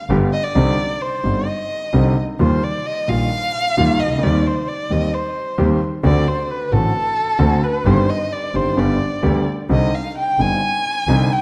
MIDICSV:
0, 0, Header, 1, 4, 480
1, 0, Start_track
1, 0, Key_signature, -3, "minor"
1, 0, Tempo, 457317
1, 585, Time_signature, 4, 2, 24, 8
1, 11983, End_track
2, 0, Start_track
2, 0, Title_t, "Violin"
2, 0, Program_c, 0, 40
2, 344, Note_on_c, 0, 75, 87
2, 460, Note_on_c, 0, 74, 87
2, 475, Note_off_c, 0, 75, 0
2, 1065, Note_on_c, 0, 72, 77
2, 1081, Note_off_c, 0, 74, 0
2, 1557, Note_on_c, 0, 75, 76
2, 1573, Note_off_c, 0, 72, 0
2, 2282, Note_off_c, 0, 75, 0
2, 2527, Note_on_c, 0, 72, 71
2, 2769, Note_on_c, 0, 74, 74
2, 2785, Note_off_c, 0, 72, 0
2, 3002, Note_on_c, 0, 75, 86
2, 3018, Note_off_c, 0, 74, 0
2, 3243, Note_on_c, 0, 77, 106
2, 3259, Note_off_c, 0, 75, 0
2, 4196, Note_on_c, 0, 75, 85
2, 4212, Note_off_c, 0, 77, 0
2, 4442, Note_on_c, 0, 74, 82
2, 4458, Note_off_c, 0, 75, 0
2, 4687, Note_on_c, 0, 72, 71
2, 4703, Note_off_c, 0, 74, 0
2, 4913, Note_on_c, 0, 74, 78
2, 4928, Note_off_c, 0, 72, 0
2, 5165, Note_on_c, 0, 75, 87
2, 5181, Note_off_c, 0, 74, 0
2, 5400, Note_on_c, 0, 72, 72
2, 5416, Note_off_c, 0, 75, 0
2, 6105, Note_off_c, 0, 72, 0
2, 6351, Note_on_c, 0, 74, 84
2, 6584, Note_on_c, 0, 72, 73
2, 6600, Note_off_c, 0, 74, 0
2, 6826, Note_on_c, 0, 71, 77
2, 6842, Note_off_c, 0, 72, 0
2, 7067, Note_on_c, 0, 69, 93
2, 7083, Note_off_c, 0, 71, 0
2, 8012, Note_on_c, 0, 71, 81
2, 8027, Note_off_c, 0, 69, 0
2, 8246, Note_on_c, 0, 72, 92
2, 8262, Note_off_c, 0, 71, 0
2, 8495, Note_on_c, 0, 75, 83
2, 8511, Note_off_c, 0, 72, 0
2, 8734, Note_on_c, 0, 74, 76
2, 8749, Note_off_c, 0, 75, 0
2, 8982, Note_on_c, 0, 72, 82
2, 8997, Note_off_c, 0, 74, 0
2, 9225, Note_on_c, 0, 74, 78
2, 9240, Note_off_c, 0, 72, 0
2, 9946, Note_off_c, 0, 74, 0
2, 10202, Note_on_c, 0, 75, 84
2, 10443, Note_on_c, 0, 77, 78
2, 10459, Note_off_c, 0, 75, 0
2, 10675, Note_off_c, 0, 77, 0
2, 10687, Note_on_c, 0, 79, 85
2, 10924, Note_on_c, 0, 80, 100
2, 10940, Note_off_c, 0, 79, 0
2, 11885, Note_on_c, 0, 79, 85
2, 11900, Note_off_c, 0, 80, 0
2, 11983, Note_off_c, 0, 79, 0
2, 11983, End_track
3, 0, Start_track
3, 0, Title_t, "Grand piano"
3, 0, Program_c, 1, 0
3, 102, Note_on_c, 1, 31, 80
3, 103, Note_on_c, 1, 50, 68
3, 104, Note_on_c, 1, 59, 60
3, 105, Note_on_c, 1, 43, 75
3, 105, Note_on_c, 1, 55, 62
3, 108, Note_on_c, 1, 67, 73
3, 305, Note_off_c, 1, 31, 0
3, 305, Note_off_c, 1, 50, 0
3, 306, Note_off_c, 1, 43, 0
3, 306, Note_off_c, 1, 59, 0
3, 307, Note_off_c, 1, 55, 0
3, 308, Note_off_c, 1, 67, 0
3, 576, Note_on_c, 1, 50, 62
3, 579, Note_on_c, 1, 55, 60
3, 580, Note_on_c, 1, 60, 58
3, 581, Note_on_c, 1, 48, 78
3, 581, Note_on_c, 1, 63, 67
3, 582, Note_on_c, 1, 36, 72
3, 782, Note_off_c, 1, 50, 0
3, 784, Note_off_c, 1, 55, 0
3, 785, Note_off_c, 1, 48, 0
3, 785, Note_off_c, 1, 60, 0
3, 785, Note_off_c, 1, 63, 0
3, 786, Note_off_c, 1, 36, 0
3, 1295, Note_on_c, 1, 50, 40
3, 1297, Note_on_c, 1, 31, 48
3, 1299, Note_on_c, 1, 43, 49
3, 1299, Note_on_c, 1, 60, 39
3, 1299, Note_on_c, 1, 63, 46
3, 1302, Note_on_c, 1, 55, 38
3, 1503, Note_off_c, 1, 50, 0
3, 1505, Note_off_c, 1, 31, 0
3, 1505, Note_off_c, 1, 60, 0
3, 1505, Note_off_c, 1, 63, 0
3, 1506, Note_off_c, 1, 43, 0
3, 1507, Note_off_c, 1, 55, 0
3, 2023, Note_on_c, 1, 50, 63
3, 2025, Note_on_c, 1, 36, 74
3, 2028, Note_on_c, 1, 55, 60
3, 2029, Note_on_c, 1, 48, 72
3, 2030, Note_on_c, 1, 63, 70
3, 2031, Note_on_c, 1, 60, 57
3, 2233, Note_off_c, 1, 50, 0
3, 2234, Note_off_c, 1, 36, 0
3, 2235, Note_off_c, 1, 55, 0
3, 2236, Note_off_c, 1, 48, 0
3, 2237, Note_off_c, 1, 60, 0
3, 2237, Note_off_c, 1, 63, 0
3, 2512, Note_on_c, 1, 51, 69
3, 2513, Note_on_c, 1, 39, 75
3, 2518, Note_on_c, 1, 58, 52
3, 2519, Note_on_c, 1, 55, 58
3, 2519, Note_on_c, 1, 65, 66
3, 2719, Note_off_c, 1, 39, 0
3, 2721, Note_off_c, 1, 58, 0
3, 2722, Note_off_c, 1, 55, 0
3, 2722, Note_off_c, 1, 65, 0
3, 2723, Note_off_c, 1, 51, 0
3, 3230, Note_on_c, 1, 46, 50
3, 3230, Note_on_c, 1, 51, 44
3, 3231, Note_on_c, 1, 34, 50
3, 3231, Note_on_c, 1, 55, 38
3, 3236, Note_on_c, 1, 58, 38
3, 3239, Note_on_c, 1, 65, 45
3, 3438, Note_off_c, 1, 46, 0
3, 3438, Note_off_c, 1, 51, 0
3, 3438, Note_off_c, 1, 55, 0
3, 3439, Note_off_c, 1, 34, 0
3, 3441, Note_off_c, 1, 58, 0
3, 3443, Note_off_c, 1, 65, 0
3, 3960, Note_on_c, 1, 51, 79
3, 3961, Note_on_c, 1, 39, 76
3, 3964, Note_on_c, 1, 58, 60
3, 3965, Note_on_c, 1, 55, 59
3, 3965, Note_on_c, 1, 65, 71
3, 4161, Note_off_c, 1, 39, 0
3, 4162, Note_off_c, 1, 51, 0
3, 4162, Note_off_c, 1, 58, 0
3, 4163, Note_off_c, 1, 55, 0
3, 4163, Note_off_c, 1, 65, 0
3, 4262, Note_on_c, 1, 36, 45
3, 4320, Note_off_c, 1, 36, 0
3, 4321, Note_on_c, 1, 37, 55
3, 4379, Note_off_c, 1, 37, 0
3, 4390, Note_on_c, 1, 38, 64
3, 4442, Note_on_c, 1, 51, 71
3, 4443, Note_off_c, 1, 38, 0
3, 4443, Note_on_c, 1, 55, 60
3, 4443, Note_on_c, 1, 60, 59
3, 4446, Note_on_c, 1, 39, 71
3, 4446, Note_on_c, 1, 67, 69
3, 4640, Note_off_c, 1, 55, 0
3, 4640, Note_off_c, 1, 60, 0
3, 4641, Note_off_c, 1, 39, 0
3, 4641, Note_off_c, 1, 67, 0
3, 4642, Note_off_c, 1, 51, 0
3, 5144, Note_on_c, 1, 51, 50
3, 5150, Note_on_c, 1, 55, 43
3, 5151, Note_on_c, 1, 60, 41
3, 5151, Note_on_c, 1, 67, 47
3, 5152, Note_on_c, 1, 39, 51
3, 5348, Note_off_c, 1, 51, 0
3, 5349, Note_off_c, 1, 55, 0
3, 5349, Note_off_c, 1, 60, 0
3, 5349, Note_off_c, 1, 67, 0
3, 5350, Note_off_c, 1, 39, 0
3, 5856, Note_on_c, 1, 51, 79
3, 5858, Note_on_c, 1, 39, 76
3, 5858, Note_on_c, 1, 55, 63
3, 5858, Note_on_c, 1, 60, 61
3, 5860, Note_on_c, 1, 67, 73
3, 6059, Note_off_c, 1, 39, 0
3, 6059, Note_off_c, 1, 55, 0
3, 6059, Note_off_c, 1, 60, 0
3, 6060, Note_off_c, 1, 51, 0
3, 6060, Note_off_c, 1, 67, 0
3, 6332, Note_on_c, 1, 50, 79
3, 6333, Note_on_c, 1, 57, 60
3, 6335, Note_on_c, 1, 38, 79
3, 6335, Note_on_c, 1, 66, 73
3, 6336, Note_on_c, 1, 60, 60
3, 6534, Note_off_c, 1, 57, 0
3, 6536, Note_off_c, 1, 38, 0
3, 6536, Note_off_c, 1, 50, 0
3, 6536, Note_off_c, 1, 60, 0
3, 6536, Note_off_c, 1, 66, 0
3, 7049, Note_on_c, 1, 50, 45
3, 7050, Note_on_c, 1, 45, 56
3, 7050, Note_on_c, 1, 57, 41
3, 7051, Note_on_c, 1, 60, 44
3, 7054, Note_on_c, 1, 33, 55
3, 7057, Note_on_c, 1, 66, 50
3, 7250, Note_off_c, 1, 50, 0
3, 7251, Note_off_c, 1, 45, 0
3, 7251, Note_off_c, 1, 57, 0
3, 7251, Note_off_c, 1, 60, 0
3, 7253, Note_off_c, 1, 33, 0
3, 7254, Note_off_c, 1, 66, 0
3, 7754, Note_on_c, 1, 50, 82
3, 7756, Note_on_c, 1, 57, 61
3, 7757, Note_on_c, 1, 38, 85
3, 7758, Note_on_c, 1, 60, 63
3, 7761, Note_on_c, 1, 66, 77
3, 7963, Note_off_c, 1, 38, 0
3, 7963, Note_off_c, 1, 57, 0
3, 7964, Note_off_c, 1, 50, 0
3, 7964, Note_off_c, 1, 60, 0
3, 7965, Note_off_c, 1, 66, 0
3, 8245, Note_on_c, 1, 31, 75
3, 8246, Note_on_c, 1, 51, 66
3, 8248, Note_on_c, 1, 55, 58
3, 8250, Note_on_c, 1, 43, 78
3, 8250, Note_on_c, 1, 60, 61
3, 8253, Note_on_c, 1, 67, 72
3, 8447, Note_off_c, 1, 31, 0
3, 8447, Note_off_c, 1, 51, 0
3, 8449, Note_off_c, 1, 43, 0
3, 8449, Note_off_c, 1, 55, 0
3, 8450, Note_off_c, 1, 60, 0
3, 8451, Note_off_c, 1, 67, 0
3, 8960, Note_on_c, 1, 51, 45
3, 8960, Note_on_c, 1, 55, 40
3, 8961, Note_on_c, 1, 31, 51
3, 8964, Note_on_c, 1, 43, 53
3, 8966, Note_on_c, 1, 60, 40
3, 8967, Note_on_c, 1, 67, 47
3, 9167, Note_off_c, 1, 55, 0
3, 9168, Note_off_c, 1, 31, 0
3, 9168, Note_off_c, 1, 51, 0
3, 9169, Note_off_c, 1, 43, 0
3, 9170, Note_off_c, 1, 60, 0
3, 9171, Note_off_c, 1, 67, 0
3, 9202, Note_on_c, 1, 50, 59
3, 9206, Note_on_c, 1, 67, 69
3, 9208, Note_on_c, 1, 31, 74
3, 9208, Note_on_c, 1, 43, 69
3, 9208, Note_on_c, 1, 55, 59
3, 9208, Note_on_c, 1, 59, 58
3, 9410, Note_off_c, 1, 50, 0
3, 9411, Note_off_c, 1, 67, 0
3, 9412, Note_off_c, 1, 31, 0
3, 9412, Note_off_c, 1, 55, 0
3, 9412, Note_off_c, 1, 59, 0
3, 9413, Note_off_c, 1, 43, 0
3, 9684, Note_on_c, 1, 50, 70
3, 9684, Note_on_c, 1, 55, 57
3, 9686, Note_on_c, 1, 38, 75
3, 9686, Note_on_c, 1, 59, 55
3, 9687, Note_on_c, 1, 67, 70
3, 9894, Note_off_c, 1, 55, 0
3, 9895, Note_off_c, 1, 38, 0
3, 9895, Note_off_c, 1, 50, 0
3, 9895, Note_off_c, 1, 59, 0
3, 9895, Note_off_c, 1, 67, 0
3, 10173, Note_on_c, 1, 50, 65
3, 10173, Note_on_c, 1, 55, 54
3, 10175, Note_on_c, 1, 36, 75
3, 10176, Note_on_c, 1, 48, 75
3, 10180, Note_on_c, 1, 60, 55
3, 10181, Note_on_c, 1, 63, 65
3, 10380, Note_off_c, 1, 50, 0
3, 10380, Note_off_c, 1, 55, 0
3, 10381, Note_off_c, 1, 36, 0
3, 10381, Note_off_c, 1, 48, 0
3, 10383, Note_off_c, 1, 60, 0
3, 10384, Note_off_c, 1, 63, 0
3, 10904, Note_on_c, 1, 50, 42
3, 10907, Note_on_c, 1, 31, 51
3, 10908, Note_on_c, 1, 43, 48
3, 10908, Note_on_c, 1, 60, 39
3, 10909, Note_on_c, 1, 63, 45
3, 10910, Note_on_c, 1, 55, 37
3, 11108, Note_off_c, 1, 50, 0
3, 11110, Note_off_c, 1, 31, 0
3, 11110, Note_off_c, 1, 43, 0
3, 11110, Note_off_c, 1, 60, 0
3, 11111, Note_off_c, 1, 55, 0
3, 11111, Note_off_c, 1, 63, 0
3, 11631, Note_on_c, 1, 48, 79
3, 11631, Note_on_c, 1, 50, 65
3, 11632, Note_on_c, 1, 60, 60
3, 11633, Note_on_c, 1, 36, 78
3, 11633, Note_on_c, 1, 55, 60
3, 11638, Note_on_c, 1, 63, 74
3, 11831, Note_off_c, 1, 48, 0
3, 11831, Note_off_c, 1, 50, 0
3, 11832, Note_off_c, 1, 36, 0
3, 11832, Note_off_c, 1, 55, 0
3, 11832, Note_off_c, 1, 60, 0
3, 11835, Note_off_c, 1, 63, 0
3, 11983, End_track
4, 0, Start_track
4, 0, Title_t, "Double bass"
4, 0, Program_c, 2, 43
4, 100, Note_on_c, 2, 31, 84
4, 304, Note_off_c, 2, 31, 0
4, 583, Note_on_c, 2, 36, 88
4, 786, Note_off_c, 2, 36, 0
4, 1307, Note_on_c, 2, 31, 57
4, 1509, Note_off_c, 2, 31, 0
4, 2034, Note_on_c, 2, 36, 77
4, 2238, Note_off_c, 2, 36, 0
4, 2516, Note_on_c, 2, 39, 85
4, 2721, Note_off_c, 2, 39, 0
4, 3243, Note_on_c, 2, 34, 57
4, 3445, Note_off_c, 2, 34, 0
4, 3962, Note_on_c, 2, 39, 78
4, 4161, Note_off_c, 2, 39, 0
4, 4199, Note_on_c, 2, 37, 51
4, 4429, Note_off_c, 2, 37, 0
4, 4435, Note_on_c, 2, 39, 90
4, 4636, Note_off_c, 2, 39, 0
4, 5145, Note_on_c, 2, 39, 59
4, 5346, Note_off_c, 2, 39, 0
4, 5861, Note_on_c, 2, 39, 86
4, 6060, Note_off_c, 2, 39, 0
4, 6333, Note_on_c, 2, 38, 88
4, 6534, Note_off_c, 2, 38, 0
4, 7046, Note_on_c, 2, 33, 60
4, 7248, Note_off_c, 2, 33, 0
4, 7761, Note_on_c, 2, 38, 87
4, 7966, Note_off_c, 2, 38, 0
4, 8240, Note_on_c, 2, 31, 89
4, 8444, Note_off_c, 2, 31, 0
4, 8966, Note_on_c, 2, 31, 58
4, 9170, Note_off_c, 2, 31, 0
4, 9202, Note_on_c, 2, 31, 84
4, 9409, Note_off_c, 2, 31, 0
4, 9692, Note_on_c, 2, 38, 78
4, 9898, Note_off_c, 2, 38, 0
4, 10176, Note_on_c, 2, 36, 82
4, 10381, Note_off_c, 2, 36, 0
4, 10900, Note_on_c, 2, 31, 56
4, 11106, Note_off_c, 2, 31, 0
4, 11617, Note_on_c, 2, 36, 80
4, 11824, Note_off_c, 2, 36, 0
4, 11983, End_track
0, 0, End_of_file